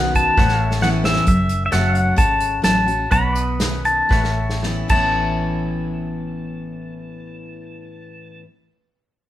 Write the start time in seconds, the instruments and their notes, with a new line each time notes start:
Already playing: fingered electric bass B1, steel-string acoustic guitar B2 D#3 C#4 F#4, pedal steel guitar B4 D#5 F#5
0.15 pedal steel guitar A5, kick, closed hi-hat
0.37 fingered electric bass A1, steel-string acoustic guitar A2, pedal steel guitar B4 C#5 F#5, kick, snare
0.48 snare
0.63 pedal steel guitar A4 E5
0.71 snare
0.81 steel-string acoustic guitar E3 B3 C#4 E4, pedal steel guitar F#5, snare
1.04 pedal steel guitar E5, snare
1.16 snare
1.27 fingered electric bass F#1, steel-string acoustic guitar F#2, pedal steel guitar E5, kick, closed hi-hat
1.49 closed hi-hat
1.66 pedal steel guitar E5
1.72 fingered electric bass F#1, steel-string acoustic guitar F#3 A3 C#4 F#4, pedal steel guitar A4 C#5 E5 F#5, snare, closed hi-hat
1.89 pedal steel guitar F5
1.95 closed hi-hat
2.00 pedal steel guitar F#5
2.16 fingered electric bass G#1, steel-string acoustic guitar C#3, pedal steel guitar A5, kick, closed hi-hat
2.40 closed hi-hat
2.62 fingered electric bass A1, steel-string acoustic guitar F#3 A3 C#4 F#4, pedal steel guitar A5, snare, closed hi-hat
2.86 steel-string acoustic guitar C#4 F#4, closed hi-hat
3.11 fingered electric bass B1, steel-string acoustic guitar B2, pedal steel guitar B4 C#5 F#5 B5, kick, closed hi-hat
3.28 pedal steel guitar D5
3.35 closed hi-hat
3.40 pedal steel guitar D#5
3.59 steel-string acoustic guitar B2 D#3 C#4 F#4, snare, closed hi-hat
3.85 pedal steel guitar A5, closed hi-hat
4.09 fingered electric bass A1, steel-string acoustic guitar A2, pedal steel guitar B4 C#5, kick, snare
4.13 pedal steel guitar E5
4.24 snare
4.33 pedal steel guitar A4
4.50 snare
4.62 steel-string acoustic guitar E3 B3 C#4 E4, snare
4.88 fingered electric bass A1, steel-string acoustic guitar A2 E3 B3 C#4 E4, pedal steel guitar A4 C#5 E5 A5, kick, crash